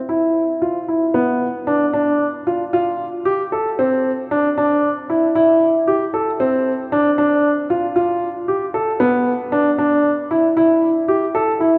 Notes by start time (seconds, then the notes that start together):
0.09 E4
0.62 F4
0.88 E4
1.14 B3
1.67 D4
1.94 D4
2.47 F4
2.73 F4
3.25 G4
3.52 A4
3.79 C4
4.31 D4
4.58 D4
5.10 E4
5.35 E4
5.88 G4
6.14 A4
6.40 C4
6.92 D4
7.18 D4
7.70 F4
7.96 F4
8.48 G4
8.74 A4
9.00 B3
9.52 D4
9.79 D4
10.31 E4
10.57 E4
11.08 G4
11.35 A4
11.60 E4